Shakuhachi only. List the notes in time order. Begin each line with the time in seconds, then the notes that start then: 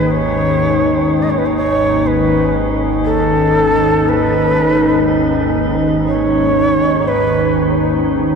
Already playing: B4
0.11 C#5
1.22 D#5
1.30 C#5
1.38 B4
1.46 C#5
1.57 C#5
2.07 B4
3.05 A4
4.09 B4
6.08 C#5
7.08 B4